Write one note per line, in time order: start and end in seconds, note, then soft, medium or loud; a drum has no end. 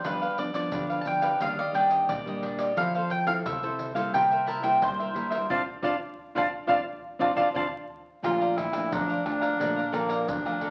0.04 0.70 G2 medium
0.04 0.25 F3 soft
0.04 0.25 B3 medium
0.04 0.20 D4 medium
0.04 0.25 D4 medium
0.04 0.21 G4 medium
0.04 0.21 B4 soft
0.04 0.38 B4 medium
0.04 0.20 F5 medium
0.04 pandeiro medium
0.04 shaker medium
0.04 surdo medium
0.22 0.37 G4 medium
0.22 0.38 B4 medium
0.22 0.37 F5 medium
0.22 pandeiro soft
0.22 shaker soft
0.38 0.51 F3 medium
0.38 0.51 B3 medium
0.38 0.51 D4 medium
0.38 0.54 D5 medium
0.38 muted cavaquinho stroke soft
0.38 pandeiro medium
0.38 shaker medium
0.54 1.01 F3 medium
0.54 1.01 B3 medium
0.54 1.01 D4 medium
0.54 0.97 D5 medium
0.54 muted cavaquinho stroke soft
0.54 pandeiro medium
0.54 shaker medium
0.72 1.38 D3 medium
0.72 0.88 D4 soft
0.72 0.89 G4 soft
0.72 0.89 B4 soft
0.72 0.88 F5 medium
0.72 pandeiro medium
0.72 shaker medium
0.72 surdo medium
0.90 1.23 G4 medium
0.90 1.22 B4 medium
0.90 1.21 F5 medium
0.90 pandeiro soft
0.90 shaker soft
1.01 1.28 F3 medium
1.01 1.07 A5 medium
1.01 pandeiro medium
1.01 shaker medium
1.06 1.28 B3 medium
1.06 1.28 D4 medium
1.06 1.41 G5 medium
1.22 1.40 G4 medium
1.22 1.39 B4 medium
1.22 1.39 F5 medium
1.22 pandeiro medium
1.22 shaker medium
1.40 2.05 D#3 medium
1.40 1.61 G3 medium
1.40 1.61 A#3 soft
1.40 1.61 D4 medium
1.40 1.57 D4 soft
1.40 1.57 G4 medium
1.40 1.57 D5 medium
1.40 1.57 D#5 medium
1.40 1.57 F5 medium
1.40 pandeiro medium
1.40 shaker medium
1.40 surdo medium
1.59 1.74 G4 medium
1.59 1.74 D5 medium
1.59 1.74 D#5 medium
1.59 1.75 F5 medium
1.59 pandeiro soft
1.59 shaker soft
1.73 2.20 G3 soft
1.73 2.20 A#3 soft
1.73 2.20 D4 medium
1.73 1.91 D4 medium
1.73 1.91 G4 medium
1.73 1.90 D5 medium
1.73 1.90 D#5 medium
1.73 2.10 G5 medium
1.73 pandeiro medium
1.90 2.25 G4 soft
1.90 2.24 D5 medium
1.90 2.24 D#5 medium
1.90 pandeiro medium
1.90 shaker medium
2.08 2.73 A#2 medium
2.08 2.79 D5 medium
2.08 pandeiro medium
2.08 shaker medium
2.08 surdo medium
2.26 2.72 G3 medium
2.26 2.72 A#3 medium
2.26 2.72 D4 medium
2.26 2.43 G4 medium
2.26 2.42 D5 medium
2.26 2.43 D#5 medium
2.26 pandeiro soft
2.26 shaker soft
2.43 2.59 D4 medium
2.43 2.59 G4 soft
2.43 2.57 D5 soft
2.43 2.58 D#5 medium
2.43 pandeiro medium
2.58 2.76 G4 medium
2.58 2.75 D5 medium
2.58 2.76 D#5 medium
2.58 pandeiro medium
2.58 shaker medium
2.77 3.42 F3 medium
2.77 3.23 C4 medium
2.77 2.93 E4 medium
2.77 3.23 A4 medium
2.77 2.94 A4 soft
2.77 2.94 C5 soft
2.77 3.09 F5 medium
2.77 2.94 F5 medium
2.77 pandeiro medium
2.77 shaker medium
2.77 surdo medium
2.95 3.09 A4 medium
2.95 3.09 C5 medium
2.95 3.10 F5 medium
2.95 pandeiro soft
2.95 shaker soft
3.10 3.27 G5 medium
3.10 muted cavaquinho stroke soft
3.10 pandeiro medium
3.26 3.56 C4 medium
3.26 3.57 E4 medium
3.26 3.57 A4 medium
3.26 3.32 F5 medium
3.26 muted cavaquinho stroke soft
3.26 pandeiro medium
3.26 shaker medium
3.45 4.10 C3 medium
3.45 3.61 E4 soft
3.45 3.61 A4 soft
3.45 3.62 C5 medium
3.45 4.16 E5 loud
3.45 3.62 F5 medium
3.45 pandeiro medium
3.45 shaker medium
3.45 surdo medium
3.63 3.91 C4 medium
3.63 3.92 E4 medium
3.63 3.92 A4 medium
3.63 3.96 A4 medium
3.63 3.95 C5 medium
3.63 pandeiro soft
3.63 shaker soft
3.79 pandeiro medium
3.79 shaker medium
3.94 4.58 G3 medium
3.94 4.59 A#3 medium
3.94 4.59 E4 medium
3.94 4.12 A4 medium
3.94 4.12 C5 medium
3.94 4.12 F5 medium
3.94 pandeiro medium
3.94 shaker medium
4.13 4.78 C3 medium
4.13 4.29 E4 medium
4.13 4.30 A#4 medium
4.13 4.30 C5 medium
4.13 4.30 E5 medium
4.13 4.46 G5 loud
4.13 pandeiro medium
4.13 shaker medium
4.13 surdo medium
4.31 4.46 A#4 soft
4.31 4.47 C5 medium
4.31 4.47 E5 medium
4.31 pandeiro soft
4.31 shaker soft
4.46 4.63 E4 medium
4.46 4.63 A#4 medium
4.46 4.62 C5 medium
4.46 4.61 E5 medium
4.46 4.63 A5 medium
4.46 pandeiro medium
4.46 shaker medium
4.62 5.10 G3 medium
4.62 5.10 A#3 medium
4.62 5.10 E4 medium
4.62 4.97 A#4 medium
4.62 4.97 C5 medium
4.62 4.96 E5 medium
4.62 4.82 G5 medium
4.62 pandeiro medium
4.62 shaker medium
4.82 5.47 G2 medium
4.82 5.51 C5 medium
4.82 pandeiro medium
4.82 shaker medium
4.82 surdo loud
4.99 5.14 A#4 medium
4.99 5.14 C5 medium
4.99 5.15 E5 medium
4.99 pandeiro soft
4.99 shaker soft
5.14 5.36 G3 medium
5.14 5.36 A#3 medium
5.14 5.31 E4 medium
5.14 5.36 E4 medium
5.14 5.31 A#4 soft
5.14 5.31 C5 soft
5.14 5.29 E5 medium
5.14 pandeiro medium
5.31 5.49 A#4 medium
5.31 5.48 C5 medium
5.31 5.48 E5 medium
5.31 pandeiro medium
5.31 shaker medium
5.50 5.61 C4 medium
5.50 5.61 D4 medium
5.50 5.61 F4 medium
5.50 5.61 C5 medium
5.50 5.61 D5 medium
5.50 5.61 F5 medium
5.50 5.61 A5 medium
5.50 surdo medium
5.82 5.94 C4 medium
5.82 5.94 D4 loud
5.82 5.94 F4 loud
5.82 5.95 C5 medium
5.82 5.94 D5 medium
5.82 5.95 D5 medium
5.82 5.95 F5 medium
5.82 5.95 A5 medium
5.82 surdo medium
6.35 6.46 C4 medium
6.35 6.46 D4 medium
6.35 6.46 F4 medium
6.35 6.47 C5 medium
6.35 6.47 D5 medium
6.35 6.48 D5 medium
6.35 6.47 F5 medium
6.35 6.48 F5 medium
6.35 6.48 A5 medium
6.35 surdo medium
6.67 6.79 C4 medium
6.67 6.79 D4 medium
6.67 6.79 F4 medium
6.67 6.79 C5 medium
6.67 6.79 D5 medium
6.67 6.80 D5 medium
6.67 6.79 F5 medium
6.67 6.80 F5 medium
6.67 6.80 A5 medium
6.67 surdo loud
7.19 7.31 C4 medium
7.19 7.31 D4 medium
7.19 7.31 F4 medium
7.19 7.32 C5 medium
7.19 7.32 D5 loud
7.19 7.32 D5 medium
7.19 7.31 F5 medium
7.19 7.32 F5 medium
7.19 7.32 A5 medium
7.19 surdo medium
7.36 7.48 C4 medium
7.36 7.48 D4 medium
7.36 7.48 F4 medium
7.36 7.48 C5 medium
7.36 7.48 D5 medium
7.36 7.48 F5 medium
7.36 7.48 A5 medium
7.36 surdo medium
7.54 7.66 C4 medium
7.54 7.66 D4 medium
7.54 7.66 F4 medium
7.54 7.66 C5 medium
7.54 7.66 D5 medium
7.54 7.67 D5 medium
7.54 7.66 F5 loud
7.54 7.67 F5 medium
7.54 7.67 A5 medium
7.54 surdo loud
8.23 8.88 A#2 medium
8.23 8.69 F3 soft
8.23 8.69 A3 soft
8.23 8.69 D4 medium
8.23 8.59 F4 loud
8.23 8.39 A4 medium
8.23 8.39 D5 soft
8.23 8.39 F5 medium
8.23 8.39 A#5 medium
8.23 pandeiro medium
8.23 tamborim medium
8.23 shaker medium
8.23 surdo medium
8.40 8.56 D5 medium
8.40 8.56 F5 medium
8.40 8.56 A#5 medium
8.40 pandeiro soft
8.40 shaker soft
8.56 8.95 E4 loud
8.56 muted cavaquinho stroke soft
8.56 pandeiro medium
8.56 tamborim medium
8.56 surdo medium
8.72 9.19 F3 medium
8.72 9.19 A3 medium
8.72 9.19 D4 medium
8.72 muted cavaquinho stroke soft
8.72 pandeiro medium
8.72 tamborim medium
8.72 shaker medium
8.91 9.56 F2 medium
8.91 9.25 D4 medium
8.91 9.07 A4 medium
8.91 9.08 D5 soft
8.91 9.08 F5 soft
8.91 9.08 A#5 medium
8.91 pandeiro medium
8.91 shaker medium
8.91 surdo loud
9.09 9.41 D5 soft
9.09 9.40 F5 medium
9.09 9.40 A#5 medium
9.09 pandeiro soft
9.09 shaker soft
9.25 9.54 F3 medium
9.25 9.54 A3 medium
9.25 9.54 D4 medium
9.25 9.96 D4 loud
9.25 pandeiro medium
9.25 tamborim medium
9.41 9.58 D5 medium
9.41 9.58 F5 medium
9.41 9.58 A#5 medium
9.41 pandeiro medium
9.41 shaker medium
9.59 10.25 A#2 medium
9.59 9.80 F3 medium
9.59 9.80 A3 soft
9.59 9.80 D4 medium
9.59 9.75 A4 soft
9.59 9.76 D5 soft
9.59 9.76 F5 medium
9.59 9.75 A#5 medium
9.59 pandeiro medium
9.59 shaker medium
9.59 surdo medium
9.76 9.91 D5 medium
9.76 9.92 F5 medium
9.76 9.92 A#5 medium
9.76 pandeiro soft
9.76 shaker soft
9.92 10.39 F3 medium
9.92 10.30 A#3 medium
9.92 10.40 D4 medium
9.92 10.09 A4 medium
9.92 10.09 D5 medium
9.92 10.09 F5 medium
9.92 10.08 A#5 medium
9.92 pandeiro medium
9.92 tamborim medium
9.92 shaker medium
10.09 10.44 D5 medium
10.09 10.43 F5 medium
10.09 10.43 A#5 medium
10.09 pandeiro medium
10.09 shaker medium
10.28 10.70 F2 medium
10.28 10.70 D4 loud
10.28 pandeiro medium
10.28 shaker medium
10.28 surdo loud
10.45 10.70 F3 medium
10.45 10.70 A3 medium
10.45 10.70 D4 medium
10.45 10.60 D5 medium
10.45 10.61 F5 medium
10.45 10.61 A#5 medium
10.45 pandeiro soft
10.45 tamborim medium
10.45 shaker soft
10.61 10.70 A4 medium
10.61 10.70 D5 soft
10.61 10.70 F5 medium
10.61 10.70 A#5 medium
10.61 pandeiro medium